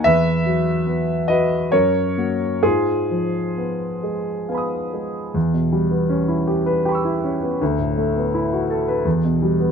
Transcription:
<<
  \new Staff \with { instrumentName = "Grand piano" } { \time 3/4 \key gis \dorian \tempo 4 = 78 <b' e''>4. <b' dis''>8 <ais' cis''>4 | <eis' gis'>2 <eis'' gis'' b'' dis'''>4 | \key e \dorian r2 <g'' b'' cis''' e'''>4 | r2. | }
  \new Staff \with { instrumentName = "Grand piano" } { \time 3/4 \key gis \dorian e,8 fis8 b8 fis'8 fis,8 <ais fis'>8 | gis,8 eis8 b8 gis8 b8 gis8 | \key e \dorian e,16 b,16 g16 b16 cis'16 e'16 g'16 b'16 g'16 e'16 cis'16 b16 | d,16 a,16 a16 b16 e'16 fis'16 a'16 b'16 e,16 b,16 g16 b16 | }
>>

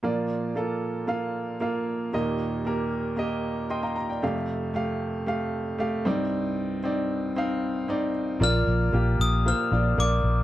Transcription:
<<
  \new Staff \with { instrumentName = "Glockenspiel" } { \time 4/4 \key bes \major \tempo 4 = 115 r1 | r1 | r1 | r1 |
f'''4. ees'''8 f'''4 d'''4 | }
  \new Staff \with { instrumentName = "Grand piano" } { \time 4/4 \key bes \major << { r1 | r2. <ees'' g'' c'''>16 <f'' bes''>16 bes''16 <d'' g''>16~ | <d'' g''>16 r2. r8. | r1 |
r1 | } \\ { <bes f' d''>4 <bes f' a'>4 <bes f' f''>4 <bes f' f''>4 | <bes g' ees''>4 <bes g' bes'>4 <bes g' ees''>4 r4 | <a g' f''>4 <a g' f''>4 <a g' f''>4 <a g' f''>8 <c' ees' d''>8~ | <c' ees' d''>4 <c' ees' d''>4 <c' ees' f''>4 <c' ees' d''>4 |
<bes f' d''>4 <bes f' g'>4 <bes f' c''>8 <bes f' d''>8 <bes f' d''>4 | } >> }
  \new Staff \with { instrumentName = "Grand piano" } { \clef bass \time 4/4 \key bes \major <bes, f>1 | <ees, bes,>1 | <f, c>2.~ <f, c>8 <c, g,>8~ | <c, g,>2.~ <c, g,>8 r8 |
<bes, f>4. r2 r8 | }
  \new Staff \with { instrumentName = "Fingered electric bass" } { \clef bass \time 4/4 \key bes \major r1 | r1 | r1 | r1 |
bes,,8 bes,,8 bes,,8 bes,,8. r16 bes,,8 bes,,8 bes,,8 | }
>>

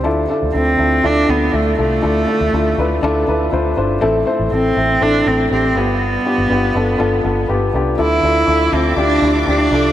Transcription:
<<
  \new Staff \with { instrumentName = "String section" } { \time 4/4 \key d \dorian \tempo 4 = 121 r1 | r1 | r1 | r1 |
<f e'' d'''>1 | }
  \new Staff \with { instrumentName = "Upright piano" } { \time 4/4 \key d \dorian <d' e' f' a'>8 <d' e' f' a'>8 <d' e' f' a'>8 <d' e' f' a'>8 <d' e' f' a'>8 <d' e' f' a'>8 <d' e' f' a'>8 <d' e' f' a'>8 | <d' e' f' a'>8 <d' e' f' a'>8 <d' e' f' a'>8 <d' e' f' b'>8 <d' e' f' a'>8 <d' e' f' b'>8 <d' e' f' c''>8 <d' e' f' c''>8 | <a c' e' a'>8 <a c' e' c''>8 <a c' e' a'>8 <a c' e' a'>8 <a c' e' a'>8 <a c' e' a'>8 <a c' e' g'>8 <b d' f' g'>8~ | <b d' f' g'>8 <b d' f' g'>8 <b d' f' g'>8 <b d' f' a'>8 <b d' f' a'>8 <b d' f' a'>8 <b d' f' g'>8 <b d' f' g'>8 |
<d' e' f' a'>8 <d' e' f' a'>8 <d' e' f' a'>8 <d' e' f' a'>8 <d' e' f' g'>8 <d' e' f' g'>8 <d' e' f' g'>8 <d' e' f' a'>8 | }
  \new Staff \with { instrumentName = "Upright piano" } { \clef bass \time 4/4 \key d \dorian d4. r2 r8 | d4. r2 r8 | a,4. r2 g,8~ | g,4 r2. |
d4. r2 r8 | }
  \new Staff \with { instrumentName = "Cello" } { \time 4/4 \key d \dorian r4 c'4 d'8 b8 a8 a8~ | a2~ a8 r4. | r4 c'4 d'8 c'8 c'8 b8~ | b2. r4 |
e'4. c'8 d'4 d'4 | }
  \new Staff \with { instrumentName = "Fingered electric bass" } { \clef bass \time 4/4 \key d \dorian d,8 r16 d,16 d,8 d,8 d,8 d,8 d,8 c,8 | d,8 r16 d,16 d,8 d,8 d,8 d,8 d,8 g,,8 | a,,8 r16 a,,16 a,,8 a,,8 a,,8 a,,8 a,,8 g,,8~ | g,,8 r16 g,,16 g,,8 g,,8 g,,8 g,,8 g,,8 c,8 |
d,8 d,8 d,8 d,8 d,8 d,8 d,8 c,8 | }
>>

